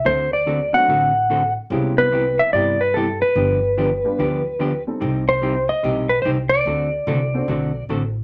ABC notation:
X:1
M:4/4
L:1/8
Q:"Swing" 1/4=145
K:Clyd
V:1 name="Electric slide guitar"
c d2 f4 z | z B2 e d B A B- | B6- B z | z c2 _e2 B c d- |
d6 z2 |]
V:2 name="Upright piano"
z3 [F,A,CDF] z4 | [_A,C^C=F_A] [G,B,=CEG]4 z3 | z3 [G,B,D=FG] z3 [G,C_EGA]- | [G,C_EGA]2 z6 |
z3 [CDFAc] z4 |]
V:3 name="Hollow-body jazz guitar"
[D,A,CFA] z [D,A,CFA] z [D,A,CFA] z [D,A,CFA] z | [C,G,B,EG] z [C,G,B,EG] z [C,G,B,EG] z [C,G,B,EG] z | [D,=F,B,DG] z [D,F,B,DG] z [D,F,B,DG] z [D,F,B,DG] z | [C,G,C_EG] z [C,G,CEG] z [C,G,CEG] z [C,G,CEG] z |
[D,A,CFA] z [D,A,CFA] z [D,A,CFA] z [D,A,CFA] z |]
V:4 name="Upright bass" clef=bass
D,,4 A,,,4 | C,,4 G,,4 | G,,,4 D,,4 | C,,4 B,,,2 C,,2 |
D,,2 C,,2 B,,,2 A,,,2 |]